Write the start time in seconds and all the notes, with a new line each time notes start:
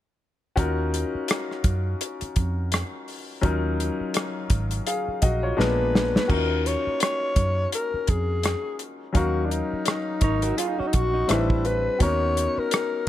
0.56 D#2 C#4 D#4 F4 F#4 A#4, kick, closed hi-hat
0.94 closed hi-hat
1.15 muted fingered electric bass stroke
1.28 cross-stick, closed hi-hat
1.51 cross-stick
1.64 F#2, kick, closed hi-hat
2.01 closed hi-hat
2.21 muted fingered electric bass stroke, closed hi-hat
2.36 F2, kick, closed hi-hat
2.72 cross-stick, closed hi-hat
3.08 open hi-hat
3.41 D#2 F#3 C#4 D#4 F4 A#4, kick, closed hi-hat
3.80 closed hi-hat
4.01 muted fingered electric bass stroke
4.14 cross-stick, closed hi-hat
4.50 G#1, kick, closed hi-hat
4.71 closed hi-hat
4.87 G#4 F5, closed hi-hat
5.08 muted fingered electric bass stroke
5.22 A#1 F#4 D#5, kick, closed hi-hat
5.43 F4 C#5
5.57 A#1 G#3 A#3 B3 D4 F4 B4, snare
5.95 snare
6.16 snare
6.28 D#2 C#4 D#4 F4 F#4 A#4, kick, crash
6.66 C#5, closed hi-hat
6.87 muted fingered electric bass stroke
7.00 C#5, cross-stick, closed hi-hat
7.36 F#2, kick, closed hi-hat
7.72 A#4, closed hi-hat
7.94 muted fingered electric bass stroke
8.07 F2 G#4, kick, closed hi-hat
8.43 cross-stick, closed hi-hat
8.79 closed hi-hat
9.13 D#2 F#3 C#4 D#4 F#4 A#4 F5, kick, closed hi-hat
9.45 D4
9.51 D#4, closed hi-hat
9.73 muted fingered electric bass stroke
9.86 cross-stick, closed hi-hat
10.21 G#1 D#4 A#4 C#5, kick, closed hi-hat
10.42 F#4 A#4, closed hi-hat
10.57 F4 G#4, closed hi-hat
10.68 D#4
10.79 C#4 D#4 F#4, muted fingered electric bass stroke
10.87 D#4
10.93 A#1 F#4, kick, closed hi-hat
11.14 D#4
11.28 A1 G3 C4 D4 E4 B4, cross-stick, closed hi-hat
11.50 kick
11.65 B4, closed hi-hat
11.99 D#2 B3 C#4 D#4 F#4 A#4 C#5, kick, closed hi-hat
12.37 closed hi-hat
12.58 A#4, muted fingered electric bass stroke
12.71 cross-stick, closed hi-hat